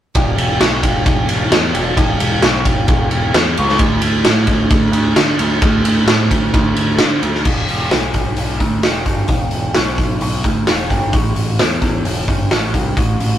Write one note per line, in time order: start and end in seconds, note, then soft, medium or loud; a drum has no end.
0.15 0.36 E1 loud
0.15 kick loud
0.15 ride loud
0.37 0.58 E1 medium
0.37 ride medium
0.60 0.81 B1 medium
0.60 snare loud
0.60 ride loud
0.83 1.03 E1 medium
0.83 kick medium
0.83 ride medium
1.06 1.26 E1 loud
1.06 kick loud
1.06 ride medium
1.29 1.49 E1 medium
1.29 ride medium
1.50 1.71 E2 medium
1.50 snare loud
1.50 ride loud
1.74 1.94 E1 medium
1.74 ride medium
1.97 2.18 E1 loud
1.97 kick loud
1.97 ride loud
2.20 2.41 E1 medium
2.20 ride medium
2.42 2.63 B1 medium
2.42 snare loud
2.42 ride loud
2.65 2.86 E1 medium
2.65 kick medium
2.65 ride medium
2.88 3.08 E1 loud
2.88 kick loud
2.88 ride medium
3.11 3.31 E1 medium
3.11 ride medium
3.34 3.55 E2 medium
3.34 snare loud
3.34 ride medium
3.57 3.79 C#2 loud
3.57 ride medium
3.69 snare soft
3.79 4.00 D2 medium
3.79 kick loud
3.79 ride loud
4.02 4.23 D2 medium
4.02 ride medium
4.25 4.46 A2 medium
4.25 snare loud
4.25 ride loud
4.47 4.68 D2 medium
4.47 kick medium
4.47 ride medium
4.70 4.91 D2 medium
4.70 kick loud
4.70 ride loud
4.92 5.13 D2 loud
4.92 ride medium
5.16 5.37 D3 medium
5.16 snare loud
5.16 ride loud
5.39 5.60 D2 loud
5.39 ride medium
5.61 5.82 D2 loud
5.61 kick loud
5.61 ride loud
5.84 6.05 D2 medium
5.84 ride medium
6.06 6.28 A2 medium
6.06 snare loud
6.06 ride loud
6.30 6.51 D2 medium
6.30 kick medium
6.30 ride medium
6.54 6.74 D2 loud
6.54 kick loud
6.54 ride medium
6.75 6.96 D2 medium
6.75 ride medium
6.98 7.20 D3 medium
6.98 snare loud
6.98 ride medium
7.22 7.43 D2 medium
7.22 ride medium
7.35 snare soft
7.45 7.67 E1 loud
7.45 kick loud
7.45 crash loud
7.68 7.90 E1 medium
7.68 open hi-hat medium
7.91 8.13 B1 medium
7.91 snare loud
7.91 open hi-hat medium
8.14 8.36 B1 medium
8.14 kick medium
8.14 open hi-hat medium
8.37 8.59 B1 medium
8.37 open hi-hat medium
8.60 8.81 D2 medium
8.60 kick medium
8.60 open hi-hat medium
8.83 9.05 E1 medium
8.83 snare loud
8.83 open hi-hat medium
9.06 9.27 G1 loud
9.06 kick medium
9.06 open hi-hat medium
9.28 9.50 E1 medium
9.28 kick loud
9.28 open hi-hat medium
9.51 9.74 E1 medium
9.51 open hi-hat medium
9.74 9.97 B1 medium
9.74 snare loud
9.74 open hi-hat medium
9.98 10.20 B1 medium
9.98 kick loud
9.98 open hi-hat medium
10.21 10.43 B1 loud
10.21 open hi-hat medium
10.44 10.66 D2 medium
10.44 kick medium
10.44 open hi-hat soft
10.67 10.89 E1 medium
10.67 snare loud
10.67 open hi-hat medium
10.90 11.12 G1 medium
10.90 kick medium
10.90 open hi-hat medium
11.13 11.35 A1 loud
11.13 kick loud
11.13 open hi-hat medium
11.36 11.57 A1 medium
11.36 open hi-hat medium
11.59 11.81 E2 medium
11.59 snare loud
11.59 open hi-hat medium
11.82 12.03 E2 medium
11.82 kick medium
11.82 open hi-hat medium
12.05 12.27 E1 loud
12.05 open hi-hat medium
12.28 12.49 G1 medium
12.28 kick medium
12.28 open hi-hat medium
12.51 12.72 A1 medium
12.51 snare loud
12.51 open hi-hat medium
12.74 12.96 C2 medium
12.74 kick medium
12.74 open hi-hat medium
12.97 13.19 A1 medium
12.97 kick loud
12.97 open hi-hat medium
13.20 13.38 A1 medium
13.20 open hi-hat medium